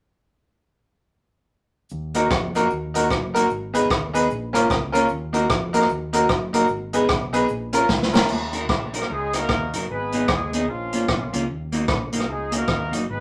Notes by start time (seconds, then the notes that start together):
1.90 D#2, cabasa
2.14 A#3 D#4 F#4 A#4, closed hi-hat, cabasa
2.31 F2, kick, cross-stick, cabasa
2.55 A#3 D#4 F#4 A#4, closed hi-hat, cabasa
2.70 D#2, cabasa
2.94 A#3 D#4 F#4 A#4, closed hi-hat, cabasa
3.10 F#1 F#4 A#4, kick, cross-stick, cabasa
3.34 A#3 D#4 F#4 A#4, closed hi-hat, cabasa
3.50 G#1, cabasa
3.74 B3 D#4 G#4 B4, closed hi-hat, cabasa
3.90 D#2, kick, cross-stick, cabasa
4.13 B3 D#4 G#4 B4, closed hi-hat, cabasa
4.31 A#1, cabasa
4.53 A#3 C#4 F4 A#4, cross-stick, closed hi-hat, cabasa
4.69 C#2 F4 A#4, kick, cross-stick, cabasa
4.92 A#3 C#4 F4 A#4, closed hi-hat, cabasa
5.09 D#2, cabasa
5.33 A#3 D#4 F#4 A#4, closed hi-hat, cabasa
5.50 F2, kick, cross-stick, cabasa
5.73 A#3 D#4 F#4 A#4, closed hi-hat, cabasa
5.81 cross-stick
5.89 D#2, cabasa
6.13 A#3 D#4 F#4 A#4, closed hi-hat, cabasa
6.29 F#1, kick, cross-stick, cabasa
6.53 A#3 D#4 F#4 A#4, closed hi-hat, cabasa
6.68 G#1, cabasa
6.93 B3 D#4 G#4 B4, closed hi-hat, cabasa
7.09 B1, kick, cross-stick, cabasa
7.33 B3 D#4 G#4 B4, closed hi-hat, cabasa
7.49 A#1, cabasa
7.73 C#4 F4 A#4, closed hi-hat, cabasa
7.89 C#2 F4 A#4, kick, snare, cabasa
8.02 snare
8.13 C#4 F4 A#4, snare, cabasa
8.29 D#2, crash
8.53 D#4 F#4 A#4, closed hi-hat
8.69 A#1, kick, cross-stick
8.93 D#4 F#4 A#4, closed hi-hat
8.98 A#3 A#4, cross-stick
9.10 C#2 G#3 D#4 G#4
9.33 A#3 D#4 F#4 A#4, cross-stick, closed hi-hat
9.49 D#2, kick, cross-stick
9.73 F#1 D#4 F#4 A#4, closed hi-hat
9.89 G#1 B3 D#4 G#4 B4
10.12 B3 D#4 G#4, closed hi-hat
10.28 D#2 G#3 G#4, kick, cross-stick
10.53 D#3 B3 D#4 G#4, closed hi-hat
10.68 A#1 F3 A#3 C#4 F4
10.93 A#3 C#4 F4, closed hi-hat
11.08 B1, kick, cross-stick
11.33 C#2 A#3 C#4 F4, closed hi-hat
11.49 D#2
11.72 A#3 D#4 F#4, closed hi-hat
11.88 A#1, kick, cross-stick
12.13 A#3 D#4 F#4 A#4, closed hi-hat
12.20 cross-stick
12.28 C#2 G#3 D#4 G#4
12.51 A#3 D#4 F#4 A#4, closed hi-hat
12.68 D#2, kick, cross-stick
12.91 F#1 A#3 D#4 F#4, closed hi-hat
13.09 G#1 B3 D#4 G#4 B4